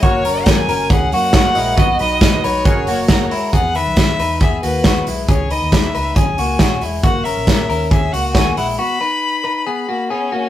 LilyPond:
<<
  \new Staff \with { instrumentName = "Violin" } { \time 4/4 \key fis \mixolydian \tempo 4 = 137 cis''4 gis''4 fis''8 fis''4. | dis''8 dis''4 cis''2 r8 | fis''8 e''4. e''8 b'4 r8 | cis''8 dis''8 e''4 gis''4. r8 |
fis''8 e''4. e''8 fis''8 gis''8 fis''8 | b''2. cis'4 | }
  \new Staff \with { instrumentName = "Synth keys" } { \time 4/4 \key fis \mixolydian << { r1 | r2. ais''4 | r1 | r1 |
r1 | r1 | } \\ { <fis' ais' cis''>2.~ <fis' ais' cis''>8 <fis' ais' dis''>8 | <fis' b' dis''>2 <fis' ais' cis''>2 | r1 | r1 |
r1 | r1 | } >> }
  \new Staff \with { instrumentName = "Clean electric guitar" } { \time 4/4 \key fis \mixolydian <ais fis'>8 <cis' ais'>4 <cis' ais'>8 <cis' gis'>8 <ais fis'>8 <ais fis'>8 <gis e'>8 | <b fis'>8 <dis' b'>4 <dis' b'>8 <cis' gis'>8 <ais fis'>8 <ais fis'>8 <gis e'>8 | <b gis'>8 <dis b'>4 <dis' b'>8 <b gis'>8 <ais fis'>8 <b fis'>8 <gis e'>8 | <cis' gis'>8 <dis' b'>4 <dis' b'>8 <cis' gis'>8 <ais fis'>8 <cis' fis'>8 <gis e'>8 |
<ais fis'>8 <cis' ais'>4 <cis' ais'>8 <cis' gis'>8 <ais fis'>8 <ais fis'>8 <gis e'>8 | <b fis'>8 <dis' b'>4 <dis' b'>8 <b gis'>8 <ais fis'>8 <b gis'>8 <ais fis'>8 | }
  \new Staff \with { instrumentName = "Fingered electric bass" } { \clef bass \time 4/4 \key fis \mixolydian fis,,8 fis,,8 fis,8 fis,,8 cis,8 fis,4 ais,,8 | b,,8 b,,8 r8 b,,8 fis,,8 fis,,4 r8 | e,8. b,,8. e,4 dis,4 b,,8 | cis,8. dis,8. cis,8 b,,8 cis,8 r8 e,,8 |
fis,,8. ais,,8. dis,4 cis,4 ais,,8 | r1 | }
  \new DrumStaff \with { instrumentName = "Drums" } \drummode { \time 4/4 <hh bd>8 hho8 <hh bd sn>8 hho8 <hh bd>8 hho8 <hh bd sn>8 hho8 | <hh bd>8 hho8 <hh bd sn>8 hho8 <hh bd>8 hho8 <hh bd sn>8 hho8 | <hh bd>8 hho8 <hh bd sn>8 hho8 <hh bd>8 hho8 <hh bd sn>8 hho8 | <hh bd>8 hho8 <hh bd sn>8 hho8 <hh bd>8 hho8 <hh bd sn>8 hho8 |
<hh bd>8 hho8 <hh bd sn>8 hho8 <hh bd>8 hho8 <hh bd sn>8 hho8 | r4 r4 r4 r4 | }
>>